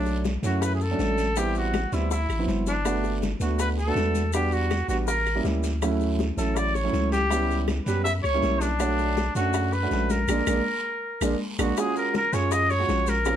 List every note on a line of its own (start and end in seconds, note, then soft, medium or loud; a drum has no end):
0.00 0.38 B1 medium
0.00 0.27 F#3 medium
0.00 0.27 A3 medium
0.00 0.22 D4 medium
0.00 0.27 D4 medium
0.00 0.27 C#5 medium
0.06 high bongo soft
0.06 high conga soft
0.06 maracas soft
0.25 high bongo medium
0.25 high conga loud
0.25 short guiro medium
0.25 maracas soft
0.43 0.95 F#2 loud
0.43 0.76 F#3 medium
0.43 0.76 A3 medium
0.43 0.77 C#4 medium
0.43 0.77 E4 medium
0.43 0.64 F#4 medium
0.43 short guiro medium
0.43 maracas medium
0.62 0.74 B4 medium
0.62 high bongo medium
0.62 high conga soft
0.62 long guiro medium
0.62 claves medium
0.62 maracas medium
0.75 0.83 G#4 medium
0.81 1.39 A4 medium
0.81 high bongo soft
0.81 high conga soft
0.81 maracas soft
0.91 1.23 F#3 medium
0.91 1.23 A3 medium
0.91 1.23 C#4 medium
0.91 1.23 D4 medium
0.99 1.86 A1 medium
0.99 high bongo soft
0.99 low bongo medium
0.99 high conga medium
0.99 short guiro medium
0.99 maracas soft
1.18 high bongo soft
1.18 high conga medium
1.18 short guiro medium
1.18 maracas medium
1.36 1.76 G3 medium
1.36 1.76 B3 medium
1.36 1.76 C4 medium
1.36 1.76 E4 medium
1.36 1.56 G4 medium
1.36 high bongo medium
1.36 long guiro medium
1.36 claves medium
1.36 maracas medium
1.55 1.95 F#4 medium
1.55 high bongo soft
1.55 high conga soft
1.55 maracas soft
1.73 high bongo medium
1.73 high conga medium
1.73 short guiro medium
1.73 claves medium
1.73 maracas soft
1.92 2.27 D2 loud
1.92 2.11 G3 medium
1.92 2.11 B3 medium
1.92 2.11 C4 medium
1.92 2.11 E4 medium
1.92 short guiro medium
1.92 maracas medium
2.11 2.46 E4 medium
2.11 high bongo medium
2.11 long guiro medium
2.11 maracas medium
2.29 2.47 A1 medium
2.29 high bongo soft
2.29 high conga soft
2.29 claves medium
2.29 maracas soft
2.39 2.71 F#3 medium
2.39 2.72 B3 medium
2.39 2.71 C4 medium
2.39 2.72 E4 medium
2.47 3.35 G1 medium
2.47 high bongo soft
2.47 low bongo medium
2.47 high conga medium
2.47 short guiro medium
2.47 maracas soft
2.67 3.19 D4 medium
2.67 high bongo soft
2.67 high conga soft
2.67 short guiro medium
2.67 maracas medium
2.85 3.24 A3 medium
2.85 3.24 B3 medium
2.85 3.24 D4 medium
2.85 3.24 F#4 medium
2.85 high bongo medium
2.85 high conga soft
2.85 long guiro medium
2.85 claves medium
2.85 maracas medium
3.04 high bongo soft
3.04 high conga soft
3.04 maracas soft
3.22 high bongo soft
3.22 high conga loud
3.22 short guiro medium
3.22 maracas soft
3.40 3.92 D2 medium
3.40 3.73 A3 medium
3.40 3.73 B3 medium
3.40 3.74 D4 medium
3.40 3.74 F#4 medium
3.40 3.59 F#4 medium
3.40 short guiro medium
3.40 maracas medium
3.59 3.68 B4 medium
3.59 high bongo medium
3.59 high conga soft
3.59 long guiro medium
3.59 claves medium
3.59 maracas medium
3.78 4.30 A4 medium
3.78 high bongo soft
3.78 high conga soft
3.78 maracas soft
3.87 4.20 A3 medium
3.87 4.20 B3 medium
3.87 4.20 D4 medium
3.87 4.20 F#4 medium
3.95 4.83 E2 loud
3.95 high bongo soft
3.95 low bongo medium
3.95 high conga medium
3.95 short guiro medium
3.95 maracas soft
4.15 high bongo soft
4.15 high conga medium
4.15 short guiro medium
4.15 maracas medium
4.33 4.73 G3 medium
4.33 4.73 B3 medium
4.33 4.73 D4 medium
4.33 4.73 F#4 medium
4.33 4.54 G4 medium
4.33 high bongo medium
4.33 long guiro medium
4.33 claves medium
4.33 maracas medium
4.52 4.89 F#4 medium
4.52 high bongo soft
4.52 high conga soft
4.52 maracas soft
4.70 high bongo medium
4.70 high conga medium
4.70 short guiro medium
4.70 claves medium
4.70 maracas soft
4.88 5.41 A1 medium
4.88 5.08 G3 medium
4.88 5.08 B3 medium
4.88 5.08 D4 medium
4.88 4.98 F#4 medium
4.88 5.08 F#4 medium
4.88 high conga soft
4.88 short guiro medium
4.88 maracas medium
5.07 5.42 A#4 medium
5.07 high bongo medium
5.07 high conga soft
5.07 long guiro medium
5.07 maracas medium
5.26 high bongo soft
5.26 high conga soft
5.26 claves medium
5.26 maracas soft
5.35 5.68 G3 medium
5.35 5.68 A#3 medium
5.35 5.68 C#4 medium
5.35 5.68 E4 medium
5.44 6.32 D2 medium
5.44 high bongo soft
5.44 low bongo medium
5.44 high conga medium
5.44 short guiro medium
5.44 maracas soft
5.63 high bongo soft
5.63 high conga soft
5.63 short guiro medium
5.63 maracas medium
5.82 6.21 F#3 medium
5.82 6.21 A3 medium
5.82 6.21 C#4 medium
5.82 6.21 E4 medium
5.82 high bongo medium
5.82 high conga soft
5.82 long guiro medium
5.82 claves medium
5.82 maracas medium
6.01 high bongo soft
6.01 high conga soft
6.01 maracas soft
6.19 high bongo soft
6.19 high conga medium
6.19 short guiro medium
6.19 maracas soft
6.37 6.90 A1 medium
6.37 6.70 F#3 medium
6.37 6.70 A3 medium
6.37 6.71 C#4 medium
6.37 6.71 E4 medium
6.37 6.57 A4 medium
6.37 short guiro medium
6.37 maracas medium
6.56 6.76 D5 medium
6.56 high bongo medium
6.56 high conga soft
6.56 long guiro medium
6.56 claves medium
6.56 maracas medium
6.75 7.11 C#5 medium
6.75 high bongo soft
6.75 high conga soft
6.75 maracas soft
6.84 7.17 F#3 medium
6.84 7.17 A3 medium
6.84 7.17 C#4 medium
6.84 7.17 E4 medium
6.93 7.80 C#2 medium
6.93 high bongo soft
6.93 low bongo medium
6.93 high conga medium
6.93 short guiro medium
6.93 maracas soft
7.12 7.64 G4 medium
7.12 high bongo soft
7.12 high conga medium
7.12 short guiro medium
7.12 maracas medium
7.30 7.70 G3 medium
7.30 7.70 B3 medium
7.30 7.70 C#4 medium
7.30 7.71 E4 medium
7.30 high bongo medium
7.30 high conga soft
7.30 long guiro medium
7.30 claves medium
7.30 maracas medium
7.49 high bongo soft
7.49 high conga soft
7.49 maracas soft
7.68 high bongo medium
7.68 high conga medium
7.68 short guiro medium
7.68 claves medium
7.68 maracas soft
7.86 8.21 F#2 medium
7.86 8.06 G3 medium
7.86 8.06 B3 medium
7.86 8.06 C#4 medium
7.86 8.06 G4 medium
7.86 8.03 B4 medium
7.86 high conga soft
7.86 short guiro medium
7.86 maracas medium
8.04 8.13 E5 medium
8.04 high bongo medium
8.04 high conga soft
8.04 long guiro medium
8.04 maracas medium
8.22 8.41 C#2 medium
8.22 8.62 C#5 medium
8.22 high bongo soft
8.22 high conga soft
8.22 claves medium
8.22 maracas soft
8.34 8.66 G3 medium
8.34 8.66 A#3 medium
8.34 8.66 C#4 medium
8.34 8.67 E4 medium
8.42 9.30 B1 medium
8.42 high bongo soft
8.42 low bongo medium
8.42 high conga medium
8.42 short guiro medium
8.42 maracas soft
8.60 9.35 D4 medium
8.60 high bongo soft
8.60 short guiro medium
8.60 maracas medium
8.80 9.19 A3 medium
8.80 9.19 D4 medium
8.80 9.19 F#4 medium
8.80 9.19 C#5 medium
8.80 high bongo medium
8.80 high conga soft
8.80 long guiro medium
8.80 claves medium
8.80 maracas medium
8.99 high bongo soft
8.99 high conga soft
8.99 maracas soft
9.17 high bongo medium
9.17 high conga medium
9.17 short guiro medium
9.17 maracas soft
9.35 9.87 F#2 medium
9.35 9.68 A3 medium
9.35 9.68 C#4 medium
9.35 9.69 D4 medium
9.35 9.74 F#4 medium
9.35 9.69 F#4 medium
9.35 short guiro medium
9.35 maracas medium
9.54 high bongo medium
9.54 high conga soft
9.54 long guiro medium
9.54 claves medium
9.54 maracas medium
9.73 10.12 B4 medium
9.73 high bongo soft
9.73 high conga soft
9.73 maracas soft
9.83 10.15 A3 medium
9.83 10.15 C#4 medium
9.83 10.15 D4 medium
9.83 10.15 F#4 medium
9.91 10.26 A#1 medium
9.91 high bongo soft
9.91 low bongo medium
9.91 high conga medium
9.91 short guiro medium
9.91 maracas soft
10.10 11.41 A#4 medium
10.10 high bongo soft
10.10 high conga medium
10.10 short guiro medium
10.10 maracas medium
10.28 10.42 A#1 medium
10.28 10.41 G#3 medium
10.28 10.41 A#3 medium
10.28 10.41 D4 medium
10.28 high bongo medium
10.28 high conga medium
10.28 long guiro medium
10.28 claves loud
10.28 maracas medium
10.47 10.61 A#1 medium
10.47 10.59 G#3 medium
10.47 10.59 A#3 medium
10.47 10.59 D4 medium
10.47 high bongo medium
10.47 high conga medium
10.47 long guiro medium
10.47 claves loud
10.47 maracas loud
11.21 11.35 A#1 medium
11.21 11.34 G#3 medium
11.21 11.34 A#3 medium
11.21 11.34 D4 medium
11.21 high bongo medium
11.21 high conga medium
11.21 long guiro medium
11.21 claves medium
11.21 maracas medium
11.59 11.73 A#1 medium
11.59 11.71 G#3 medium
11.59 11.71 A#3 medium
11.59 11.71 D4 medium
11.59 11.80 F#4 medium
11.59 high bongo medium
11.59 high conga medium
11.59 long guiro medium
11.59 claves medium
11.59 maracas loud
11.77 12.17 G#3 medium
11.77 12.17 C#4 medium
11.77 12.17 F4 medium
11.77 12.17 F#4 medium
11.77 11.96 G#4 medium
11.77 high bongo medium
11.77 high conga soft
11.77 long guiro medium
11.77 claves medium
11.77 maracas medium
11.96 12.14 A#4 medium
11.96 high bongo soft
11.96 high conga soft
11.96 maracas soft
12.14 12.35 A#4 medium
12.14 high bongo soft
12.14 high conga medium
12.14 short guiro medium
12.14 maracas soft
12.33 12.85 F#2 loud
12.33 12.66 G#3 medium
12.33 12.66 C#4 medium
12.33 12.66 F4 medium
12.33 12.66 G#4 medium
12.33 12.53 C#5 medium
12.33 short guiro medium
12.33 maracas medium
12.51 12.72 D#5 loud
12.51 high bongo medium
12.51 high conga soft
12.51 long guiro medium
12.51 claves medium
12.51 maracas medium
12.70 13.10 C#5 loud
12.70 high bongo soft
12.70 high conga soft
12.70 maracas soft
12.79 13.12 G#3 medium
12.79 13.12 C#4 medium
12.79 13.12 F4 medium
12.79 13.13 F#4 medium
12.88 13.36 A#1 medium
12.88 high bongo soft
12.88 low bongo medium
12.88 high conga medium
12.88 short guiro medium
12.88 maracas soft
13.07 13.36 A#4 medium
13.07 high bongo soft
13.07 high conga medium
13.07 short guiro medium
13.07 maracas medium
13.25 13.36 C4 medium
13.25 13.36 C#4 medium
13.25 13.36 F4 medium
13.25 13.36 G#4 medium
13.25 high bongo medium
13.25 long guiro medium
13.25 claves medium
13.25 maracas medium